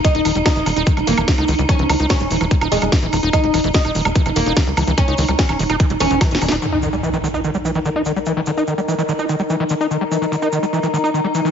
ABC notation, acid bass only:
X:1
M:4/4
L:1/16
Q:1/4=146
K:none
V:1 name="Acid bass" clef=bass
_E, _E E, G, _F, F, E, E E, G, F, F, E, E E, G, | _F, F, _E, _E E, G, F, F, E, E E, G, F, F, E, E | _E, G, _F, F, E, _E E, G, F, F, E, E E, G, F, F, | _E, _E E, G, _F, F, E, E E, G, F, E, F, E, E, E |
_E, _E E, G, _F, F, E, E E, G, F, F, E, E E, G, | _F, F, _E, _E E, G, F, F, E, E E, G, F, F, E, E | _E, G, _F, F, E, _E E, G, F, F, E, E E, G, F, F, |]